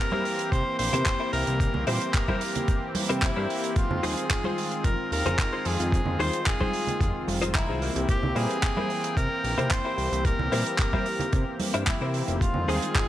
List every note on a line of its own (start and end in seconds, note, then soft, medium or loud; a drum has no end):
0.00 1.30 E3 medium
0.00 1.30 A#3 medium
0.00 1.30 C4 medium
0.00 1.31 G4 medium
0.00 0.51 A#4 loud
0.12 0.25 E4 loud
0.12 0.25 G4 medium
0.12 0.25 A#4 medium
0.12 0.25 C5 medium
0.12 high conga loud
0.25 open hi-hat medium
0.39 muted clean electric guitar stroke soft
0.39 closed hi-hat medium
0.52 0.63 C3 medium
0.52 0.77 C5 loud
0.52 kick loud
0.52 closed hi-hat medium
0.79 0.91 A#1 medium
0.79 1.29 C5 loud
0.79 open hi-hat loud
0.93 1.04 C3 medium
0.93 1.06 E4 loud
0.93 1.06 G4 loud
0.93 1.06 A#4 loud
0.93 1.06 C5 loud
0.93 closed hi-hat medium
0.93 low conga medium
1.05 kick loud
1.05 clap loud
1.05 closed hi-hat medium
1.20 1.54 E4 medium
1.20 1.54 G4 medium
1.20 1.54 A#4 medium
1.20 1.54 C5 loud
1.33 1.44 C2 loud
1.33 1.57 E3 medium
1.33 1.57 A#3 medium
1.33 1.57 C4 medium
1.33 1.58 G4 loud
1.33 1.83 A#4 loud
1.33 open hi-hat loud
1.47 1.69 C2 loud
1.47 closed hi-hat medium
1.60 1.98 E3 medium
1.60 1.98 A#3 medium
1.60 1.98 C4 medium
1.60 1.99 G4 medium
1.60 kick loud
1.60 closed hi-hat medium
1.74 1.85 C2 loud
1.74 low conga medium
1.87 1.99 A#2 medium
1.87 2.08 E4 loud
1.87 2.08 G4 medium
1.87 2.08 A#4 medium
1.87 2.15 C5 loud
1.87 2.08 C5 loud
1.87 open hi-hat loud
1.87 high conga medium
2.01 3.46 E3 medium
2.01 3.46 A#3 medium
2.01 3.47 C4 medium
2.01 3.47 G4 medium
2.01 closed hi-hat medium
2.13 2.95 A#4 loud
2.13 kick loud
2.13 clap loud
2.13 closed hi-hat medium
2.28 2.41 E4 loud
2.28 2.41 G4 medium
2.28 2.41 A#4 medium
2.28 2.41 C5 loud
2.28 kick medium
2.28 high conga medium
2.41 open hi-hat loud
2.55 muted clean electric guitar stroke soft
2.55 closed hi-hat medium
2.55 low conga medium
2.68 kick loud
2.68 closed hi-hat medium
2.95 open hi-hat loud
2.95 high conga medium
3.09 3.31 C3 medium
3.09 3.22 E4 loud
3.09 3.22 G4 medium
3.09 3.22 A#4 loud
3.09 3.22 C5 loud
3.09 closed hi-hat medium
3.09 high conga medium
3.22 3.79 E4 medium
3.22 kick loud
3.22 clap loud
3.22 closed hi-hat medium
3.36 3.47 G2 medium
3.36 3.70 E4 medium
3.36 3.70 G4 medium
3.36 3.70 A#4 medium
3.36 3.70 C5 medium
3.49 3.73 E3 medium
3.49 3.73 A#3 medium
3.49 3.73 C4 medium
3.49 3.74 G4 loud
3.49 open hi-hat loud
3.64 closed hi-hat medium
3.76 3.88 F2 soft
3.76 4.14 D#3 medium
3.76 4.14 G#3 medium
3.76 4.14 C4 medium
3.76 4.06 F4 medium
3.76 4.15 F4 loud
3.76 kick loud
3.76 closed hi-hat medium
3.91 4.01 F2 loud
3.91 low conga medium
4.03 4.15 D#2 medium
4.03 4.24 D#4 loud
4.03 4.24 F4 medium
4.03 4.24 G#4 loud
4.03 4.85 G#4 loud
4.03 4.24 C5 loud
4.03 open hi-hat loud
4.03 high conga medium
4.17 5.62 D#3 medium
4.17 5.62 G#3 medium
4.17 5.63 C4 medium
4.17 5.63 F4 medium
4.17 closed hi-hat medium
4.30 kick loud
4.30 clap loud
4.30 closed hi-hat medium
4.44 4.57 D#4 medium
4.44 4.57 F4 medium
4.44 4.57 G#4 medium
4.44 4.58 C5 loud
4.44 high conga medium
4.58 open hi-hat medium
4.71 muted clean electric guitar stroke soft
4.71 closed hi-hat medium
4.84 4.96 F1 medium
4.84 5.10 A#4 loud
4.84 kick loud
4.84 closed hi-hat medium
5.12 5.23 D#2 medium
5.12 5.68 A#4 loud
5.12 open hi-hat loud
5.26 5.36 F1 medium
5.26 5.39 D#4 loud
5.26 5.39 F4 loud
5.26 5.39 G#4 loud
5.26 5.39 C5 loud
5.26 closed hi-hat medium
5.26 low conga medium
5.38 kick loud
5.38 clap loud
5.38 closed hi-hat medium
5.52 5.86 D#4 medium
5.52 5.86 F4 medium
5.52 5.86 G#4 medium
5.52 5.86 C5 loud
5.65 5.77 F2 loud
5.65 5.89 D#3 medium
5.65 5.89 G#3 medium
5.65 5.89 C4 medium
5.65 5.90 F4 loud
5.65 6.20 G#4 loud
5.65 open hi-hat loud
5.80 6.01 F2 loud
5.80 closed hi-hat medium
5.92 6.30 D#3 medium
5.92 6.30 G#3 medium
5.92 6.30 C4 medium
5.92 6.31 F4 medium
5.92 kick loud
5.92 closed hi-hat medium
6.06 6.17 F2 loud
6.06 low conga medium
6.19 6.31 D#2 medium
6.19 6.40 D#4 loud
6.19 6.40 F4 loud
6.19 6.40 G#4 loud
6.19 6.40 C5 loud
6.19 6.49 C5 loud
6.19 open hi-hat loud
6.19 high conga medium
6.33 7.78 D#3 medium
6.33 7.79 G#3 medium
6.33 7.79 C4 medium
6.33 7.79 F4 medium
6.33 closed hi-hat medium
6.46 7.28 G#4 loud
6.46 kick loud
6.46 clap loud
6.46 closed hi-hat medium
6.60 6.74 D#4 medium
6.60 6.74 F4 medium
6.60 6.74 G#4 medium
6.60 6.74 C5 loud
6.60 kick medium
6.60 high conga medium
6.74 open hi-hat medium
6.87 muted clean electric guitar stroke soft
6.87 closed hi-hat medium
6.87 low conga medium
7.00 7.12 F1 medium
7.00 kick loud
7.00 closed hi-hat medium
7.15 7.25 F1 soft
7.28 7.71 F1 medium
7.28 open hi-hat loud
7.28 high conga medium
7.41 7.54 D#4 loud
7.41 7.55 F4 loud
7.41 7.55 G#4 loud
7.41 7.55 C5 loud
7.41 closed hi-hat medium
7.41 high conga medium
7.54 8.05 E4 medium
7.54 8.05 A#5 medium
7.54 kick loud
7.54 clap loud
7.54 closed hi-hat medium
7.68 7.90 C2 medium
7.68 7.82 D#4 medium
7.68 7.82 F4 medium
7.68 7.81 G#4 medium
7.68 7.81 C5 loud
7.81 8.06 E3 medium
7.81 8.06 A#3 medium
7.81 8.06 C4 medium
7.81 8.25 E4 medium
7.81 8.25 G4 medium
7.81 8.06 G4 loud
7.81 8.26 A#4 medium
7.81 8.26 C5 medium
7.81 open hi-hat loud
7.96 8.06 C2 medium
7.96 closed hi-hat medium
8.08 8.20 C2 soft
8.08 8.46 E3 medium
8.08 8.47 A#3 medium
8.08 8.47 C4 medium
8.08 8.47 G4 loud
8.08 8.38 G4 loud
8.08 kick loud
8.08 closed hi-hat medium
8.23 8.33 C2 loud
8.23 low conga medium
8.35 8.47 A#2 medium
8.35 8.56 E4 loud
8.35 8.56 G4 medium
8.35 9.17 G#4 loud
8.35 8.56 A#4 loud
8.35 8.57 C5 loud
8.35 open hi-hat medium
8.35 high conga medium
8.49 9.94 E3 medium
8.49 9.95 A#3 medium
8.49 9.95 C4 medium
8.49 9.95 G5 loud
8.49 closed hi-hat medium
8.63 kick loud
8.63 clap loud
8.63 closed hi-hat medium
8.77 8.90 E4 loud
8.77 8.90 G4 medium
8.77 8.90 A#4 medium
8.77 8.90 C5 loud
8.77 high conga medium
8.90 open hi-hat medium
9.04 muted clean electric guitar stroke soft
9.04 closed hi-hat medium
9.17 9.28 C3 medium
9.17 9.73 A#4 loud
9.17 kick loud
9.17 closed hi-hat medium
9.44 9.55 A#1 medium
9.44 open hi-hat loud
9.58 9.68 C3 medium
9.58 9.71 E4 loud
9.58 9.71 G4 loud
9.58 9.71 A#4 loud
9.58 9.71 C5 loud
9.58 closed hi-hat medium
9.58 low conga medium
9.71 10.27 C5 loud
9.71 kick loud
9.71 clap loud
9.71 closed hi-hat medium
9.85 10.19 E4 medium
9.85 10.19 G4 medium
9.85 10.19 A#4 medium
9.85 10.19 C5 loud
9.97 10.09 C2 loud
9.97 10.22 E3 medium
9.97 10.22 A#3 medium
9.97 10.22 C4 medium
9.97 10.22 G4 loud
9.97 open hi-hat medium
10.12 10.33 C2 loud
10.12 closed hi-hat medium
10.25 10.63 E3 medium
10.25 10.63 A#3 medium
10.25 10.63 C4 medium
10.25 10.63 G4 loud
10.25 10.79 A#4 loud
10.25 kick loud
10.25 closed hi-hat medium
10.39 10.49 C2 loud
10.39 low conga medium
10.51 10.63 A#2 medium
10.51 10.73 E4 loud
10.51 10.73 G4 medium
10.51 10.73 A#4 loud
10.51 10.73 C5 loud
10.51 open hi-hat loud
10.51 high conga medium
10.65 12.11 E3 medium
10.65 12.11 A#3 medium
10.65 12.11 C4 medium
10.65 12.12 G4 loud
10.65 closed hi-hat medium
10.78 11.57 A#4 loud
10.78 kick loud
10.78 clap loud
10.78 closed hi-hat medium
10.93 11.06 E4 medium
10.93 11.06 G4 medium
10.93 11.06 A#4 medium
10.93 11.06 C5 loud
10.93 kick medium
10.93 high conga medium
11.06 open hi-hat medium
11.19 muted clean electric guitar stroke soft
11.19 closed hi-hat medium
11.19 low conga medium
11.33 11.44 C3 medium
11.33 kick loud
11.33 closed hi-hat medium
11.60 open hi-hat loud
11.60 high conga medium
11.74 11.85 G2 loud
11.74 11.87 E4 loud
11.74 11.87 G4 loud
11.74 11.87 A#4 loud
11.74 11.87 C5 loud
11.74 closed hi-hat medium
11.74 high conga medium
11.87 12.43 E4 medium
11.87 kick loud
11.87 clap loud
11.87 closed hi-hat medium
12.01 12.23 C3 medium
12.01 12.35 E4 medium
12.01 12.35 G4 medium
12.01 12.35 A#4 medium
12.01 12.35 C5 loud
12.14 12.38 E3 medium
12.14 12.38 A#3 medium
12.14 12.38 C4 medium
12.14 12.38 G4 medium
12.14 open hi-hat medium
12.28 12.50 F1 medium
12.28 closed hi-hat medium
12.40 12.79 D#3 medium
12.40 12.79 G#3 medium
12.40 12.79 C4 medium
12.40 12.79 F4 loud
12.40 12.70 F4 medium
12.40 kick loud
12.40 closed hi-hat medium
12.54 12.66 F2 loud
12.54 low conga medium
12.67 12.80 D#2 medium
12.67 12.89 D#4 loud
12.67 12.89 F4 medium
12.67 12.89 G#4 loud
12.67 13.08 G#4 loud
12.67 12.89 C5 loud
12.67 open hi-hat loud
12.67 high conga medium
12.81 13.08 D#3 medium
12.81 13.08 G#3 medium
12.81 13.08 C4 medium
12.81 13.08 F4 medium
12.81 closed hi-hat medium
12.95 kick loud
12.95 clap loud
12.95 closed hi-hat medium